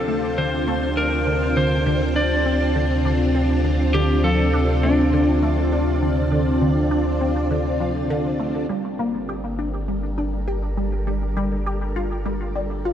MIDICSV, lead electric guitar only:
0, 0, Header, 1, 2, 480
1, 0, Start_track
1, 0, Key_signature, -1, "minor"
1, 0, Tempo, 594059
1, 1265, Time_signature, 4, 2, 24, 8
1, 10447, End_track
2, 0, Start_track
2, 0, Title_t, "Lead electric guitar"
2, 0, Program_c, 0, 29
2, 0, Note_on_c, 0, 69, 77
2, 307, Note_on_c, 0, 72, 86
2, 328, Note_off_c, 0, 69, 0
2, 786, Note_on_c, 0, 70, 86
2, 800, Note_off_c, 0, 72, 0
2, 1268, Note_on_c, 0, 72, 100
2, 1280, Note_off_c, 0, 70, 0
2, 1742, Note_off_c, 0, 72, 0
2, 1746, Note_on_c, 0, 74, 91
2, 2433, Note_off_c, 0, 74, 0
2, 3186, Note_on_c, 0, 67, 104
2, 3409, Note_off_c, 0, 67, 0
2, 3426, Note_on_c, 0, 69, 105
2, 3905, Note_on_c, 0, 62, 78
2, 3920, Note_off_c, 0, 69, 0
2, 6513, Note_off_c, 0, 62, 0
2, 10447, End_track
0, 0, End_of_file